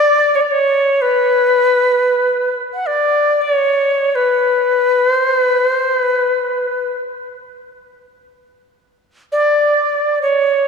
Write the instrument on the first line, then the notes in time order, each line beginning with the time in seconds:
native american-style wooden flute
Already playing: D5
0.35 C#5
0.41 D5
0.51 C#5
1.02 B4
2.74 F#5
2.87 D5
3.42 C#5
4.15 B4
5.14 C5
5.40 B4
5.69 C5
5.96 B4
9.32 D5
10.22 C#5